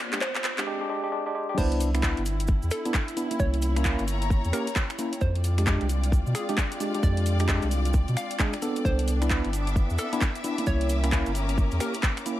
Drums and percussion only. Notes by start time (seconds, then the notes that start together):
0.13 clap, closed hi-hat
0.21 kick, clap
0.35 clap, closed hi-hat
0.44 clap, open hi-hat
0.58 clap, closed hi-hat
1.58 kick, crash, cabasa
1.72 closed hi-hat
1.80 open hi-hat, cabasa
1.94 finger snap, closed hi-hat, cabasa
2.03 kick, clap, cabasa
2.17 closed hi-hat
2.26 open hi-hat, cabasa
2.40 closed hi-hat, cabasa
2.47 kick, cabasa
2.62 cabasa
2.71 finger snap, open hi-hat, cabasa
2.85 closed hi-hat, cabasa
2.94 kick, clap, cabasa
3.08 closed hi-hat, cabasa
3.17 open hi-hat, cabasa
3.31 closed hi-hat, cabasa
3.39 kick, cabasa
3.54 closed hi-hat
3.62 open hi-hat, cabasa
3.76 finger snap, closed hi-hat, cabasa
3.85 kick, clap, cabasa
3.99 closed hi-hat, cabasa
4.08 open hi-hat, cabasa
4.22 closed hi-hat, cabasa
4.30 kick, cabasa
4.45 closed hi-hat, cabasa
4.53 finger snap, open hi-hat, cabasa
4.67 closed hi-hat, cabasa
4.76 kick, clap, cabasa
4.90 finger snap, closed hi-hat, cabasa
4.99 open hi-hat, cabasa
5.13 closed hi-hat, cabasa
5.21 kick, cabasa
5.35 closed hi-hat
5.44 open hi-hat, cabasa
5.58 finger snap, closed hi-hat, cabasa
5.67 kick, clap, cabasa
5.81 closed hi-hat
5.89 open hi-hat, cabasa
6.04 closed hi-hat, cabasa
6.12 kick, cabasa
6.27 cabasa
6.35 finger snap, open hi-hat, cabasa
6.49 closed hi-hat, cabasa
6.58 kick, clap, cabasa
6.72 closed hi-hat, cabasa
6.80 open hi-hat, cabasa
6.94 closed hi-hat, cabasa
7.03 kick, cabasa
7.17 closed hi-hat
7.26 open hi-hat, cabasa
7.39 finger snap, closed hi-hat, cabasa
7.48 kick, clap, cabasa
7.62 closed hi-hat, cabasa
7.71 open hi-hat, cabasa
7.85 closed hi-hat, cabasa
7.93 kick, cabasa
8.08 closed hi-hat, cabasa
8.17 finger snap, open hi-hat, cabasa
8.31 closed hi-hat, cabasa
8.39 kick, clap, cabasa
8.53 finger snap, closed hi-hat, cabasa
8.62 open hi-hat, cabasa
8.76 closed hi-hat, cabasa
8.85 kick, cabasa
8.99 closed hi-hat
9.08 open hi-hat, cabasa
9.22 finger snap, closed hi-hat, cabasa
9.30 kick, clap, cabasa
9.45 closed hi-hat
9.53 open hi-hat, cabasa
9.67 closed hi-hat, cabasa
9.76 kick, cabasa
9.90 cabasa
9.98 finger snap, open hi-hat, cabasa
10.13 closed hi-hat, cabasa
10.21 kick, clap, cabasa
10.35 closed hi-hat, cabasa
10.44 open hi-hat, cabasa
10.58 closed hi-hat, cabasa
10.66 kick, cabasa
10.81 closed hi-hat
10.89 open hi-hat, cabasa
11.04 finger snap, closed hi-hat, cabasa
11.12 kick, clap, cabasa
11.26 closed hi-hat, cabasa
11.35 open hi-hat, cabasa
11.49 closed hi-hat, cabasa
11.58 kick, cabasa
11.71 closed hi-hat, cabasa
11.80 finger snap, open hi-hat, cabasa
11.94 closed hi-hat, cabasa
12.03 kick, clap, cabasa
12.17 finger snap, closed hi-hat, cabasa
12.26 open hi-hat, cabasa